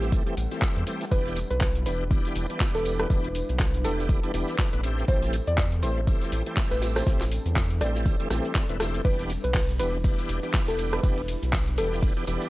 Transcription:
Already playing: A1 E3 G3 A3 C4 G4 A4 F#5
0.01 snare
0.12 kick, closed hi-hat, tambourine
0.27 E3 A3 C4 G4, closed hi-hat
0.37 A1, open hi-hat, tambourine
0.51 E3 A3 C4 G4, snare, closed hi-hat
0.62 kick, snare, clap, closed hi-hat, tambourine
0.76 E2, closed hi-hat
0.87 E3 A3 C4 G4, open hi-hat, tambourine
1.01 snare, closed hi-hat
1.11 E1 E3 B3 D4 E4 G4 B4, kick, closed hi-hat, tambourine, shaker
1.26 snare, closed hi-hat
1.36 open hi-hat, tambourine, shaker
1.51 B1 B4, closed hi-hat, shaker
1.61 kick, snare, clap, closed hi-hat, tambourine, shaker
1.75 closed hi-hat
1.86 E1 E3 B3 D4 G4 B4, open hi-hat, tambourine, shaker
2.01 shaker
2.11 E3 B3 D4 G4, kick, closed hi-hat, tambourine, shaker
2.25 snare, open hi-hat
2.36 E1, open hi-hat, tambourine, shaker
2.50 E3 B3 D4 G4, closed hi-hat, shaker
2.60 kick, snare, clap, closed hi-hat, tambourine, shaker
2.75 E1 A4, snare, closed hi-hat
2.85 open hi-hat, tambourine, shaker
2.99 B4, cross-stick, closed hi-hat, shaker
3.10 E1 E3 B3 D4 G4, kick, closed hi-hat, tambourine, shaker
3.24 closed hi-hat
3.34 open hi-hat, tambourine, shaker
3.49 B1, closed hi-hat, shaker
3.59 kick, snare, clap, closed hi-hat, tambourine, shaker
3.74 open hi-hat
3.84 E1 E3 B3 D4 G4 A4, open hi-hat, tambourine, shaker
3.99 snare, shaker
4.09 kick, closed hi-hat, tambourine, shaker
4.23 E3 B3 D4 G4, closed hi-hat
4.34 E1 E3 B3 D4 G4, open hi-hat, tambourine, shaker
4.48 snare, closed hi-hat, shaker
4.58 E3 B3 D4 G4, kick, snare, clap, closed hi-hat, tambourine, shaker
4.73 A1 E3 B3 D4 B4, closed hi-hat
4.83 E3 G3 A3 C4 G4 A4, open hi-hat, tambourine, shaker
4.97 snare, shaker
5.08 A1 E3 A3 C4 G4 C5, kick, closed hi-hat, tambourine, shaker
5.22 snare, closed hi-hat
5.33 open hi-hat, tambourine, shaker
5.47 E2 D5, closed hi-hat, shaker
5.57 kick, snare, clap, closed hi-hat, tambourine, shaker
5.72 closed hi-hat
5.82 A1 E3 A3 C4 G4 C5, open hi-hat, tambourine, shaker
5.97 shaker
6.07 E3 A3 C4 G4, kick, closed hi-hat, tambourine, shaker
6.22 snare, open hi-hat
6.32 A1, open hi-hat, tambourine, shaker
6.46 E3 A3 C4 G4, closed hi-hat, shaker
6.57 kick, snare, clap, closed hi-hat, tambourine, shaker
6.71 A1 B4, snare, closed hi-hat
6.82 D4, snare, open hi-hat, tambourine, shaker
6.96 C5, cross-stick, snare, tambourine, shaker
7.06 A1 E3 A3 C4 G4, kick, snare, closed hi-hat, tambourine, shaker
7.20 snare, clap, closed hi-hat, tambourine
7.31 open hi-hat, tambourine, shaker
7.46 E2, closed hi-hat, shaker
7.56 kick, snare, clap, closed hi-hat, tambourine, shaker
7.70 open hi-hat
7.81 A1 E3 A3 C4 G4 D5, cross-stick, open hi-hat, tambourine, shaker
7.95 snare, shaker
8.06 kick, closed hi-hat, tambourine, shaker
8.20 E3 A3 C4 G4, closed hi-hat
8.30 A1 E3 A3 C4 G4, cross-stick, snare, open hi-hat, tambourine, shaker
8.45 closed hi-hat, shaker
8.54 E3 A3 C4 G4, kick, snare, clap, closed hi-hat, tambourine, shaker
8.69 E1 E3 A3 C4 B4, closed hi-hat
8.80 E3 A3 C4 G4, cross-stick, snare, open hi-hat, tambourine, shaker
8.94 snare, closed hi-hat, shaker
9.05 E1 E3 B3 D4 E4 G4 B4, kick, closed hi-hat, ride, tambourine, shaker
9.19 snare, closed hi-hat
9.30 open hi-hat, tambourine, shaker
9.44 B1 B4, closed hi-hat, shaker
9.54 kick, snare, clap, closed hi-hat, ride, tambourine, shaker
9.69 closed hi-hat
9.79 E1 E3 B3 D4 G4 B4, open hi-hat, tambourine, shaker
9.94 shaker
10.04 E3 B3 D4 G4, kick, closed hi-hat, ride, tambourine, shaker
10.18 snare, open hi-hat
10.29 E1, open hi-hat, tambourine, shaker
10.43 E3 B3 D4 G4, closed hi-hat, shaker
10.53 kick, snare, clap, closed hi-hat, ride, tambourine, shaker
10.68 E1 A4, snare, closed hi-hat
10.79 open hi-hat, tambourine, shaker
10.93 B4, cross-stick, closed hi-hat, shaker
11.03 E1 E3 B3 D4 G4, kick, closed hi-hat, ride, tambourine, shaker
11.18 closed hi-hat
11.28 open hi-hat, tambourine, shaker
11.42 B1, closed hi-hat, shaker
11.53 kick, snare, clap, closed hi-hat, ride, tambourine, shaker
11.67 open hi-hat
11.78 E1 E3 B3 D4 G4 A4, open hi-hat, tambourine, shaker
11.92 snare, shaker
12.02 kick, closed hi-hat, ride, tambourine, shaker
12.17 E3 B3 D4 G4, closed hi-hat
12.27 E1 E3 B3 D4 G4, open hi-hat, tambourine, shaker
12.41 snare, closed hi-hat, shaker

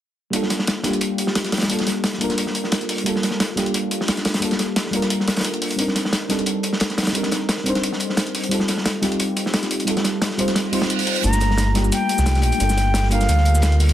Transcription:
0.30 G3 A#3 D4, closed hi-hat
0.34 F4 A4
0.43 snare
0.50 snare, closed hi-hat
0.59 snare
0.67 snare, closed hi-hat
0.83 G3 A#3 D4 F4 G4, snare, closed hi-hat
0.93 closed hi-hat
1.01 closed hi-hat
1.18 closed hi-hat
1.27 snare
1.35 snare, closed hi-hat
1.45 snare, closed hi-hat
1.52 snare, closed hi-hat
1.57 snare, closed hi-hat
1.62 snare, closed hi-hat
1.67 G3 A#3 D4, closed hi-hat
1.71 F4 A4
1.79 snare, closed hi-hat
1.87 snare, closed hi-hat
2.04 snare, closed hi-hat
2.13 snare
2.18 G3 A#3 D4, closed hi-hat
2.22 F4 A#4
2.30 snare, closed hi-hat
2.38 closed hi-hat
2.47 snare
2.55 closed hi-hat
2.64 snare
2.72 snare, closed hi-hat
2.81 closed hi-hat
2.89 closed hi-hat, open hi-hat
2.98 closed hi-hat
3.03 G3 A#3 D4, closed hi-hat
3.08 F4 A4
3.16 snare
3.23 snare, closed hi-hat
3.31 snare
3.40 snare, closed hi-hat
3.56 G3 A#3 D4 F4 G4, snare, closed hi-hat
3.66 closed hi-hat
3.74 closed hi-hat
3.91 closed hi-hat
4.01 snare
4.08 snare, closed hi-hat
4.17 snare, closed hi-hat
4.25 snare, closed hi-hat
4.34 snare, closed hi-hat
4.39 G3 A#3 D4, closed hi-hat
4.44 F4 A4
4.51 snare, closed hi-hat
4.59 snare, closed hi-hat
4.76 snare, closed hi-hat
4.86 snare
4.91 G3 A#3 D4, closed hi-hat
4.95 F4 A#4
5.02 snare, closed hi-hat
5.10 closed hi-hat
5.20 snare
5.28 snare, closed hi-hat
5.36 snare, closed hi-hat
5.40 snare, closed hi-hat
5.44 snare, closed hi-hat
5.54 closed hi-hat
5.62 closed hi-hat, open hi-hat
5.70 closed hi-hat
5.76 G3 C4 D4, closed hi-hat
5.80 D#4 A#4
5.88 snare
5.95 snare, closed hi-hat
6.05 snare
6.13 snare, closed hi-hat
6.29 G3 C4 D4 D#4 A4, snare, closed hi-hat
6.39 closed hi-hat
6.46 closed hi-hat
6.63 closed hi-hat
6.73 snare
6.80 snare, closed hi-hat
6.90 snare, closed hi-hat
6.98 snare, closed hi-hat
7.03 snare, closed hi-hat
7.07 snare, closed hi-hat
7.12 G3 C4 D4, closed hi-hat
7.16 D#4 A#4
7.23 snare, closed hi-hat
7.31 snare, closed hi-hat
7.49 snare, closed hi-hat
7.57 snare
7.64 G3 C4 D4, closed hi-hat
7.68 D#4 C5
7.75 snare, closed hi-hat
7.83 closed hi-hat
7.93 snare
8.00 closed hi-hat
8.10 snare
8.17 snare, closed hi-hat
8.27 closed hi-hat
8.35 closed hi-hat, open hi-hat
8.43 closed hi-hat
8.49 G3 C4 D#4, closed hi-hat
8.53 F4 A4
8.60 snare
8.68 snare, closed hi-hat
8.77 snare
8.86 snare, closed hi-hat
9.02 G3 C4 D#4 F4 G4, snare, closed hi-hat
9.12 closed hi-hat
9.20 closed hi-hat
9.36 closed hi-hat
9.46 snare
9.54 snare, closed hi-hat
9.63 snare, closed hi-hat
9.71 closed hi-hat
9.79 closed hi-hat
9.85 G3 C4 D#4, closed hi-hat
9.89 F4 A4
9.97 snare, closed hi-hat
10.04 snare, closed hi-hat
10.22 snare, closed hi-hat
10.31 snare
10.38 G3 C4 D#4 F4 C5, closed hi-hat
10.48 snare, closed hi-hat
10.55 snare, closed hi-hat, reverse cymbal
10.72 G3 C4 D#4 F4 C5, closed hi-hat, open hi-hat
10.82 snare, closed hi-hat
10.90 closed hi-hat
10.99 closed hi-hat, open hi-hat
11.07 closed hi-hat, open hi-hat
11.16 closed hi-hat
11.22 G1 G3 A#3 D4 A#5, closed hi-hat, riser, shaker
11.26 A3 F4
11.33 snare, closed hi-hat, shaker
11.40 snare, closed hi-hat, shaker
11.51 snare
11.58 snare, closed hi-hat, shaker
11.74 G3 A#3 D4 F4 G4, snare, closed hi-hat
11.84 shaker
11.92 G5, closed hi-hat, shaker
12.09 closed hi-hat
12.18 C2, snare, shaker
12.26 snare, closed hi-hat, shaker
12.35 snare, closed hi-hat
12.42 A#1, closed hi-hat
12.43 G5, closed hi-hat
12.52 closed hi-hat
12.58 G1 G3 A#3 D4, closed hi-hat, shaker
12.62 F4 A4
12.70 snare, closed hi-hat, shaker
12.77 snare, closed hi-hat, shaker
12.94 snare, closed hi-hat, shaker
13.03 snare
13.09 G3 A#3 D4 F5, closed hi-hat
13.13 F4 A#4
13.21 snare, closed hi-hat, shaker
13.28 D2, closed hi-hat, shaker
13.38 snare
13.45 closed hi-hat
13.54 snare, shaker
13.62 snare, closed hi-hat, shaker
13.72 closed hi-hat
13.80 closed hi-hat, open hi-hat, shaker
13.89 closed hi-hat

